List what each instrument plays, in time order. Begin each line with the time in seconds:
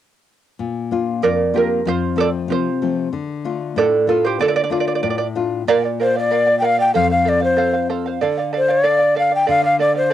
0.59 nylon-string guitar A#2
0.91 nylon-string guitar A#3 D4 F4
1.22 nylon-string guitar F2, charango A#4 D5
1.54 nylon-string guitar A#3 D4 F4, charango G4 A#4
1.85 nylon-string guitar F2, charango F4 C5
2.16 nylon-string guitar F3 A3 C4, charango A4
2.20 charango D5
2.48 nylon-string guitar C3, charango F4 C5
2.82 nylon-string guitar F3 A3 C4
3.13 nylon-string guitar D3
3.45 nylon-string guitar A3 D4 F4
3.76 nylon-string guitar A2, charango A4 D5
4.07 nylon-string guitar A3 D4 F4, charango F4 A4
4.25 charango G4 C5
4.39 nylon-string guitar D3, charango A4 D5
4.48 charango D5
4.56 charango D5
4.64 charango D5
4.70 nylon-string guitar A3 D4 F4, charango D5
4.80 charango D5
4.88 charango D5
4.95 charango D5
5.03 nylon-string guitar A2, charango D5
5.10 charango D5
5.18 charango D5
5.35 nylon-string guitar A3 D4 F4
5.68 nylon-string guitar A#2, charango A#4 D5 F5
5.84 charango D5 F5
6.00 charango A#4 D5 F5, quena C5
6.15 charango D5 F5, quena D5
6.31 charango A#4 D5 F5
6.47 charango D5 F5
6.60 charango A#4 D5 F5, quena G5
6.65 quena F5
6.78 charango D5 F5, quena G5
6.94 nylon-string guitar F2, charango A4 C5 F5, quena F5
7.10 charango C5 F5, quena F5
7.25 charango A4 C5 F5, quena D5
7.41 charango C5 F5, quena C5
7.57 charango A4 C5 F5
7.73 charango C5 F5
7.90 charango A4 C5 F5
8.06 charango C5 F5
8.21 nylon-string guitar D3, charango A4 D5 F5
8.38 charango D5 F5
8.53 charango A4 D5 F5
8.58 quena C5
8.69 charango D5 F5, quena D5
8.84 charango A4 D5 F5
8.99 charango D5 F5
9.15 charango A4 D5 F5, quena F5
9.31 charango D5 F5
9.35 quena G5
9.46 nylon-string guitar D3, charango A4 D5 F5, quena F5
9.62 charango D5 F5, quena F5
9.79 charango A4 D5 F5, quena D5
9.95 quena C5, charango D5 F5
10.10 charango A4 D5